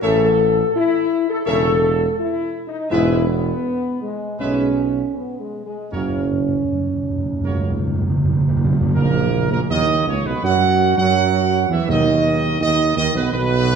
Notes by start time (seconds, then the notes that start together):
0.02 A1 C#3 A3 A4 C#5 E5
0.75 E4
1.30 A4
1.46 E1 C#3 A3 A4 C#5 E5
2.19 E4
2.67 D#4
2.91 E1 G#2 G#3 E4 B4 E5
3.28 B3
4.02 G#3
4.39 B1 G#2 G#3 C#4 B4 E5
5.14 B3
5.40 G#3
5.66 G#3
5.92 F#1 F#2 C#3 F#3 C#4 A#4 C#5
6.01 F#2
6.09 F#2
6.17 F#2
6.25 F#2
6.33 F#2
6.41 F#2
6.48 F#2
6.56 F#2
6.64 F#2
6.72 F#2
6.80 F#2
6.87 F#2
6.95 F#2
7.03 F#2
7.10 F#2
7.18 F#2
7.26 F#2
7.33 F#2
7.41 C#2 F#2 C#3 F#3 A#4 C#5
7.48 F#2
7.56 F#2
7.63 F#2
7.71 F#2
7.79 F#2
7.87 F#2
7.94 F#2
8.02 F#2
8.09 F#2
8.17 F#2
8.25 F#2
8.33 F#2
8.40 F#2
8.49 F#2
8.57 F#2
8.65 F#2
8.73 F#2
8.81 F#2
8.89 F#2
8.95 A#1 F#2 A#2 A#3 A#4
9.51 A#1 A#2 A#3 A#4
9.70 D#2 D#3 D#4 D#5
10.07 C#2 C#3 C#4 C#5
10.25 B1 B2 B3 B4
10.43 F#2 F#3 F#4 F#5
10.97 F#2 F#3 F#4 F#5
11.69 E2 E3 E4 E5
11.88 D#2 B2 D#3 D#4 D#5
12.60 D#2 D#3 D#4 D#5
12.96 D#2 D#3 D#4 D#5
13.15 B1 B2 B3 B4
13.32 B1 B2 B3 B4